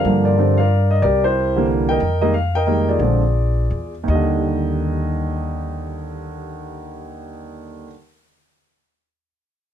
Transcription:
Already playing: A#4 D5 F5
0.05 G2 D3 F3 G3 A#3
0.25 F4 A#4 D5
0.38 D3 F3 G3 C4
0.57 A#4 D5 F5
0.91 D#5
1.02 C2 G4 A#4 D5
1.24 E4 G4 C5
1.56 D3 E3 G3 A#3
1.89 A#4 D#5 G5
2.00 F2
2.21 D#3 G3 G#3 A#3 D#5
2.34 F5
2.55 A#4 D#5 G5
2.67 D#3 G3 G#3 A#3
2.89 F4 G#4 D5
2.99 A#1 D3 F3 G#3 C4
3.70 E2
4.03 D#2 D#3
4.08 D#2 G3 D#5
4.15 D3

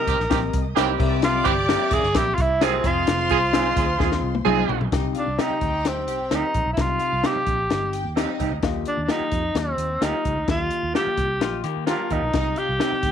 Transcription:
Already playing: C4 G4 A#4 D#5 D#6
0.07 C2 D#3 C4 G4, kick, closed hi-hat
0.19 A#1, snare
0.29 A#1 D#3 C4 G4 A#4 D5, kick, snare, closed hi-hat
0.36 D#5
0.53 C2, kick, closed hi-hat
0.75 C2 E3 A#3 C4 D#4 G4 A#4 D#5, snare, closed hi-hat
0.98 C2 C3 C4 G4 A#4 D5 E5 D6, kick, crash
1.22 F4, snare, closed hi-hat
1.44 G1 E3 C4 G4, kick, closed hi-hat
1.68 A#3 C4 E4 G4 A#4 E5, snare, closed hi-hat
1.91 E1 C3 A#3 E4 G#4, kick, closed hi-hat
2.03 G1, snare
2.14 A#1 C3 A#3 C4 E4 G4 A#4 E5, kick, snare, closed hi-hat
2.35 C2 F4, kick, closed hi-hat
2.41 E4
2.61 F3 A#3 C4 D#4 E4 G4 G#4 A#4 E5, snare, closed hi-hat
2.84 F1 C4 F4 G#4 C5 D#5 C6, kick, closed hi-hat
3.07 F1, snare, closed hi-hat
3.30 C2 F3 D#4 G#4, kick, closed hi-hat
3.53 C4 D#4 F4 G#4 D#5, snare, closed hi-hat
3.76 D2 F3 D#4 G#4, kick, closed hi-hat
3.98 D#2 F3 C4 D#4 F4 G#4 D#5, kick, snare
4.12 snare
4.23 C2
4.35 high tom
4.45 C2 F3 C4 D#4 F4 G#4 D#5, mid tom
4.69 B1, floor tom
4.81 floor tom
4.92 C2 C3 C4 D#4 G4 D#5, kick, snare, closed hi-hat
5.15 D4 F4 F5, closed hi-hat
5.26 C2
5.38 C4 D#4 G4 D#5 G5, snare, closed hi-hat
5.50 muted fingered electric bass stroke
5.61 D2 G4 G5, kick, closed hi-hat
5.85 C4 D#4 G4 D#5, snare, closed hi-hat
6.07 C2 G4 G5, closed hi-hat
6.31 D2 C4 D#4 G4 A#4, snare, closed hi-hat
6.54 A#1, kick, closed hi-hat
6.66 B1
6.73 E4
6.77 C2 C3 C4 D#4 F4 G4 D#5, kick, snare, closed hi-hat
7.00 F4 F5, closed hi-hat
7.13 C2
7.24 C4 D#4 G4 D#5, snare, closed hi-hat
7.36 muted fingered electric bass stroke
7.47 A#1, kick, closed hi-hat
7.70 G1 C4 D#4 G4 D#5, snare, closed hi-hat
7.93 G4 G5, closed hi-hat
8.04 D#2
8.16 C4 D#4 G4 D5 D#5, snare, closed hi-hat
8.22 D#5
8.39 C2 C4 D#4 G4, kick, closed hi-hat
8.51 D2
8.63 D#2 D#3 A#3 F4 G4 D#5, kick, snare, closed hi-hat
8.85 D4, closed hi-hat
8.97 D#2
9.03 D4
9.08 A#3 D#4 F4 G4 D#5, snare, closed hi-hat
9.20 muted fingered electric bass stroke
9.32 F2, kick, closed hi-hat
9.55 D#2 A#3 C4 F4 G4 D#5, snare, closed hi-hat
9.77 D#2, closed hi-hat
10.01 D2 A#3 D#4 F4 G4 D#5, snare, closed hi-hat
10.25 C#2, kick, closed hi-hat
10.36 D2
10.48 D#2 D#3 A#3 F4 G4 D#5, kick, snare, closed hi-hat
10.71 closed hi-hat
10.83 D#2
10.94 A#3 F4 G4 D#5, snare, closed hi-hat
11.07 muted fingered electric bass stroke
11.18 C2, kick, closed hi-hat
11.41 A#1 A#3 F4 G4 D#5, snare, closed hi-hat
11.64 D#3 A#3 G4, closed hi-hat
11.87 A#3 D4 F4 G4 A#4 F5, snare, closed hi-hat
12.10 D#2 A#3 D#4 F4 G4, kick, closed hi-hat
12.22 B1
12.34 C2 C3 C4 D#4 G4 D#5, kick, snare, closed hi-hat
12.56 F4 G4 F5, closed hi-hat
12.69 C2
12.79 C4 D#4 G4 D#5 G5, snare, closed hi-hat
12.92 muted fingered electric bass stroke
13.03 D2 G4 G5, kick, closed hi-hat

